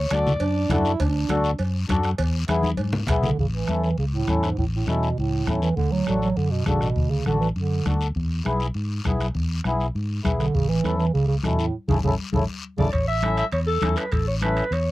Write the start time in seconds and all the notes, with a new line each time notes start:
Already playing: C#5
0.11 D2 D4 F#4 A4 D5, bombo rim, cowbell, high conga, short guiro
0.27 low conga, short guiro
0.40 F#2 D4, cowbell, high conga, long guiro
0.70 F#2 D4 E4 F#4 A4, bombo low, bombo rim, cowbell, high conga, low conga, short guiro
0.85 short guiro
1.00 D2 D4, bombo low, cowbell, high conga, long guiro
1.09 D4
1.29 D2 D4 F#4 A4, bombo rim, cowbell, high conga, short guiro
1.44 short guiro
1.59 F#2, cowbell, high conga, long guiro
1.88 F#2 D4 F#4 A4, bombo low, bombo rim, cowbell, high conga, short guiro
2.03 bombo rim, short guiro
2.18 E2, bombo low, cowbell, high conga, long guiro
2.48 E2 B3 E4 G#4, bombo rim, cowbell, high conga, short guiro
2.63 high conga, short guiro
2.77 G#2, cowbell, high conga, long guiro
2.93 low conga
3.07 B1 B3 E4 G#4, bombo low, bombo rim, cowbell, low conga, short guiro
3.23 D3, low conga, short guiro
3.37 A1 C#3, bombo low, high conga, long guiro
3.52 E3
3.68 E2 C#4 E4 A4, bombo rim, high conga, short guiro
3.83 E3, short guiro
3.98 C#2 C#3, high conga, long guiro
4.13 A2
4.27 E2 C#4 E4 A4, bombo low, bombo rim, high conga, short guiro
4.43 G#2, bombo rim, short guiro
4.57 A1 A2, bombo low, high conga, long guiro
4.75 A2
4.87 E2 B2 C#4 E4 A4, bombo rim, high conga, short guiro
5.03 short guiro
5.17 C#2 A2, high conga, long guiro
5.47 E2 C#4 E4 A4, bombo low, bombo rim, high conga, short guiro
5.62 E3, short guiro
5.76 D2 D3, bombo low, high conga, long guiro
5.92 F#3
6.07 A1 D4 F#4 A4, bombo rim, high conga, short guiro
6.21 F#3, short guiro
6.37 F#2 D3, high conga, long guiro
6.51 B2
6.66 A1 C#3 D4 F#4 A4, bombo low, bombo rim, high conga, short guiro
6.81 B2, bombo rim, short guiro
6.96 D2, bombo low, high conga, long guiro
7.10 C#3
7.26 A1 D3 D4 F#4 A4, bombo rim, high conga, short guiro
7.40 E3, short guiro
7.56 F#2 D3, high conga, long guiro
7.86 D2 D4 F#4 A4, bombo low, bombo rim, high conga, short guiro
8.01 short guiro
8.15 E2, bombo low, high conga, long guiro
8.45 B1 B3 E4 G#4, bombo rim, high conga, short guiro
8.60 short guiro
8.74 G#2, high conga, long guiro
9.05 B1 B3 E4 G#4, bombo low, bombo rim, high conga, short guiro
9.20 bombo rim, short guiro
9.35 E2, bombo low, high conga, long guiro
9.64 B1 B3 E4 G#4, bombo rim, high conga, short guiro
9.80 short guiro
9.95 G#2, high conga, long guiro
10.24 B1 B3 E4 G#4, bombo low, bombo rim, high conga, short guiro
10.39 D3, bombo rim, short guiro
10.54 A1 C#3, bombo low, high conga, long guiro
10.69 E3
10.84 E2 C#4 E4 A4, bombo rim, high conga, short guiro
10.97 E3, short guiro
11.13 C#2 C#3, high conga, long guiro
11.28 C#3
11.43 E2 B2 C#4 E4 A4, bombo low, bombo rim, high conga, short guiro
11.58 A2, short guiro
11.88 A1 C#3 C#4 E4 A4, bombo low, high conga, long guiro
12.04 A1 C#3 C#4 E4 A4, bombo low, high conga, long guiro
12.33 A1 C#3 C#4 E4 A4, bombo low, high conga, long guiro
12.78 A1 C#3 C#4 E4 A4 D5, bombo low, high conga, long guiro
12.92 A1 C#5, bombo low, high timbale, long guiro
13.08 E5
13.23 C#4 E4 A4, bombo rim, high conga, high timbale, short guiro
13.37 E5, high timbale, short guiro
13.52 E2 C#5, high conga, high timbale, long guiro
13.67 A4
13.81 E2 C#4 E4 A4, bombo low, bombo rim, high conga, high timbale, short guiro
13.96 B4, bombo rim, high timbale, short guiro
14.12 A1 A4, bombo low, high conga, high timbale, long guiro
14.28 C#5
14.41 C#4 E4 A4 B4, bombo rim, high conga, high timbale, short guiro
14.57 high timbale, short guiro
14.71 E2 C#5, high conga, high timbale, long guiro